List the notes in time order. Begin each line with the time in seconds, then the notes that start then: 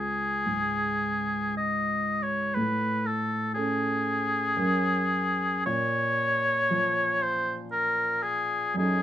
Already playing: C#2 G#4
0.46 G#2
1.57 D#5
2.23 C#5
2.55 A2 B4
3.06 A4
3.54 C#4 G#4 A4
4.56 F#2 C#4 A#4
5.66 A#2 C#5
6.71 F3
7.23 C5
7.72 A#4
8.23 G#4
8.74 F#2 F#3 C#4 D#4
8.78 G#4 A4